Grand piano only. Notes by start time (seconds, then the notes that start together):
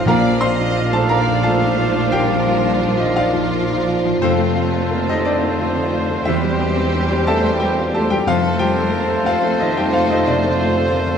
0.07 A#2 A#4 F5 A#5
0.24 F3
0.41 F4 C5 C6
0.60 D4
0.76 D#4
0.93 F4 A4 A5
1.09 D4 A#4 F5 A#5
1.27 F3
1.43 F4 A4 A5
1.62 D#4
1.78 F4
1.95 F3
2.12 A#3 G4 G5
2.31 F3
2.48 F4
2.64 D4
2.82 D#4
2.97 D#4 F4 D#5
3.16 D4 F4 D5 F5
3.33 F3
3.50 F4
3.70 D#4
3.87 F4
4.05 F3
4.22 F2 C4 A4 C5
4.38 A3
4.56 F4
4.73 A4
4.91 A#4
5.08 D#4 A4 D#5
5.25 C4 D4 D5
5.44 A3
5.60 F4
5.76 D#4
5.93 F4
6.11 A3
6.25 E2 E4 C5 E5
6.44 G3
6.61 G4
6.76 C4
6.93 D4
7.11 G4
7.27 C4 A4 E5 A5
7.44 G3
7.60 G4 G5
7.78 F4
7.94 G4 A4 A5
8.10 G3 G4 G5
8.27 F2 F4 C5 F5
8.43 A3
8.59 F4 G4 G5
8.77 A4
8.92 A#4
9.08 A4
9.24 C4 F4 C5 F5
9.43 A3
9.60 D#4 F4 D#5
9.77 D#4 G4 G5
9.93 F4 F5
10.10 A3 D#4 D#5
10.27 C3 D4 D5
10.44 A3
10.61 F4
10.77 A4
10.95 A#4
11.11 A4